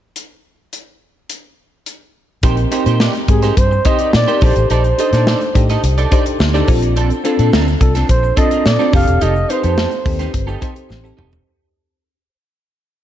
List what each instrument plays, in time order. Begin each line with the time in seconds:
0.16 closed hi-hat
0.73 closed hi-hat
1.30 closed hi-hat
1.86 closed hi-hat
2.43 fingered electric bass A#1, fm electric piano C4 D#4 G4 A#4, clean electric guitar D#4 G4 C5, kick, closed hi-hat, shaker
2.57 muted clean electric guitar stroke, closed hi-hat, shaker
2.71 fm electric piano C4 D#4 G4 A#4, clean electric guitar D#4 G4 C5, closed hi-hat, shaker
2.86 fingered electric bass A#2, clean electric guitar D#4 G4 C5, closed hi-hat, shaker
3.00 clean electric guitar D#4 G4 D5, snare, shaker
3.14 muted clean electric guitar stroke, closed hi-hat, shaker
3.28 fingered electric bass G#2, fm electric piano C4 D#4 G4 A#4, flugelhorn G#4, muted clean electric guitar stroke, kick, closed hi-hat, shaker
3.42 clean electric guitar D#4 G4 C5, snare, closed hi-hat, shaker
3.57 fingered electric bass G2, flugelhorn C5, kick, closed hi-hat, shaker
3.71 muted clean electric guitar stroke, shaker
3.85 fm electric piano C4 D#4 G4 C5, clean electric guitar D#4 G4 C5, flugelhorn D#5, kick, closed hi-hat, shaker
3.99 clean electric guitar D#4 G4 D5, closed hi-hat, shaker
4.13 fingered electric bass A#2, flugelhorn D5, muted clean electric guitar stroke, snare, shaker
4.27 fm electric piano C4 D#4 G4 A#4, clean electric guitar D#4 G4 C5, closed hi-hat, shaker
4.41 fingered electric bass A#1, fm electric piano D4 D#4 G4 A4, clean electric guitar D#4 A4 D5, flugelhorn C5, kick, open hi-hat
4.56 fingered electric bass A1, muted clean electric guitar stroke, closed hi-hat, shaker
4.70 fingered electric bass A#1, clean electric guitar D#4 A4 D5, flugelhorn C5, closed hi-hat, shaker
4.84 muted clean electric guitar stroke, closed hi-hat, shaker
4.98 fm electric piano D4 D#4 G4 A4, clean electric guitar D#4 A4 D#5, closed hi-hat, shaker
5.13 fingered electric bass A#2, clean electric guitar D#4 A4 D5, snare, closed hi-hat, shaker
5.27 clean electric guitar D#4 A4 D5, snare, shaker
5.41 muted clean electric guitar stroke, closed hi-hat, shaker
5.54 fingered electric bass A2, fm electric piano D4 D#4 G4 A4, muted clean electric guitar stroke, kick, closed hi-hat, shaker
5.69 clean electric guitar D#4 A4 D#5, snare, closed hi-hat, shaker
5.83 fingered electric bass C2, muted clean electric guitar stroke, closed hi-hat, shaker
5.98 clean electric guitar D#4 A4 D5, closed hi-hat, shaker
6.11 fm electric piano D4 D#4 G4 C5, clean electric guitar D#4 A4 D5, kick, closed hi-hat, shaker
6.26 muted clean electric guitar stroke, closed hi-hat, shaker
6.40 fingered electric bass D2, muted clean electric guitar stroke, snare, shaker
6.54 fm electric piano D4 D#4 G4 A4, clean electric guitar D#4 A4 D5, closed hi-hat, shaker
6.67 fingered electric bass A#1, fm electric piano C4 D4 F4 A4, muted clean electric guitar stroke, kick, open hi-hat
6.82 muted clean electric guitar stroke, closed hi-hat, shaker
6.96 clean electric guitar C4 D4 A4, closed hi-hat, shaker
7.10 muted clean electric guitar stroke, closed hi-hat, shaker
7.24 fm electric piano C4 D4 F4 A4, clean electric guitar C4 D4 A4, closed hi-hat, shaker
7.39 fingered electric bass A#2, clean electric guitar C4 D4 A4, closed hi-hat, shaker
7.53 fingered electric bass D2, clean electric guitar C4 D4 A#4, snare, shaker
7.67 muted clean electric guitar stroke, shaker
7.80 fingered electric bass C2, fm electric piano C4 D4 F4 A4, flugelhorn A4, muted clean electric guitar stroke, kick, closed hi-hat, shaker
7.95 clean electric guitar C4 D4 A4, snare, closed hi-hat, shaker
8.09 fingered electric bass A#1, flugelhorn C5, muted clean electric guitar stroke, kick, closed hi-hat, shaker
8.23 muted clean electric guitar stroke, shaker
8.37 clean electric guitar C4 D4 A4, fm electric piano C4 D4 F4 A4, flugelhorn D#5, kick, closed hi-hat, shaker
8.51 clean electric guitar C4 D4 A#4, closed hi-hat, shaker
8.65 fingered electric bass A#2, flugelhorn D5, snare, shaker
8.79 fm electric piano C4 D4 F4 A4, clean electric guitar C4 D4 A4, shaker
8.92 fingered electric bass F1, fm electric piano C4 D#4 G4 A4, clean electric guitar D#4 G4 A4, flugelhorn F5, kick, open hi-hat
9.07 fingered electric bass E1, muted clean electric guitar stroke, closed hi-hat, shaker
9.21 fingered electric bass F1, clean electric guitar D#4 G4 A4, flugelhorn D#5, closed hi-hat, shaker
9.36 muted clean electric guitar stroke, shaker
9.49 fm electric piano C4 D#4 G4 B4, clean electric guitar D#4 G4 C5, flugelhorn C5, closed hi-hat, shaker
9.57 fm electric piano C5
9.63 fingered electric bass F2, clean electric guitar D#4 G4 A4, closed hi-hat, shaker
9.77 clean electric guitar D#4 G4 A4, snare, shaker
9.91 muted clean electric guitar stroke, closed hi-hat, shaker
10.05 fingered electric bass D#2, fm electric piano C4 D#4 G4 A4, muted clean electric guitar stroke, kick, open hi-hat, shaker
10.19 clean electric guitar D#4 G4 C5, snare, closed hi-hat, shaker
10.33 fingered electric bass G1, muted clean electric guitar stroke, kick, closed hi-hat, shaker
10.47 clean electric guitar D#4 G4 A4, shaker
10.61 fm electric piano C4 D#4 G4 C5, clean electric guitar D#4 G4 A4, kick, closed hi-hat, shaker
10.75 muted clean electric guitar stroke, closed hi-hat, shaker
10.89 fingered electric bass A1, muted clean electric guitar stroke, snare, shaker
11.04 fm electric piano C4 D#4 G4 A4, muted clean electric guitar stroke, shaker
11.17 fingered electric bass E1, clean electric guitar D#4 G4 A4, mid tom
11.32 muted clean electric guitar stroke, floor tom, shaker